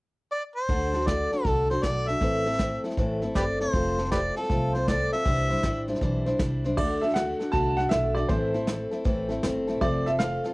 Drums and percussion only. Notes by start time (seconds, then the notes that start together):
0.69 kick, snare
0.93 snare
1.01 snare
1.07 kick, snare, hi-hat pedal
1.32 snare
1.45 kick, snare
1.70 snare
1.83 kick, snare, hi-hat pedal
2.08 snare
2.21 kick, snare
2.46 snare
2.53 snare
2.59 kick, snare, hi-hat pedal
2.84 snare
2.90 snare
2.97 kick, snare
3.22 snare
3.35 kick, snare, hi-hat pedal
3.60 snare
3.73 kick, snare
3.98 snare
4.05 snare
4.12 kick, snare, hi-hat pedal
4.36 snare
4.43 snare
4.50 kick, snare
4.75 snare
4.88 kick, snare, hi-hat pedal
5.12 snare
5.25 kick, snare
5.50 snare
5.57 snare
5.63 kick, snare, hi-hat pedal
5.88 snare
5.95 snare
6.01 kick, snare
6.26 snare
6.39 kick, snare, hi-hat pedal
6.64 snare
6.77 kick, snare, crash
7.02 snare
7.09 snare
7.16 snare, hi-hat pedal
7.40 snare
7.53 kick, snare
7.78 snare
7.91 snare, hi-hat pedal
8.16 snare
8.29 kick, snare
8.54 snare
8.67 snare, hi-hat pedal
8.92 snare
9.05 kick, snare
9.30 snare
9.43 snare, hi-hat pedal
9.68 snare
9.81 kick, snare
10.06 snare
10.20 snare, hi-hat pedal
10.44 snare